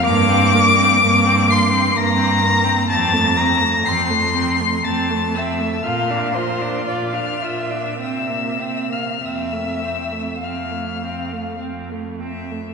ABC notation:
X:1
M:3/4
L:1/16
Q:1/4=60
K:F
V:1 name="Violin"
d''6 c''2 b'4 | a'2 b'2 c''4 a'2 e'2 | f'2 c'2 d' f' e'2 e'3 f' | e'4 f'4 z2 e2 |]
V:2 name="Violin"
d'6 c'2 b4 | a2 b2 c'4 a2 e2 | f2 c2 d f e2 e3 f | e4 f4 z4 |]
V:3 name="Viola"
B, C B, C B, C B, C B, C B, C | C A, C A, C A, C A, C A, C A, | F D F D F D F D C B, C B, | C A, C A, C A, C A, C A, C A, |]
V:4 name="Cello" clef=bass
G,,4 G,,4 G,,4 | F,,4 F,,4 F,,4 | B,,4 B,,4 C,4 | F,,4 F,,4 F,,4 |]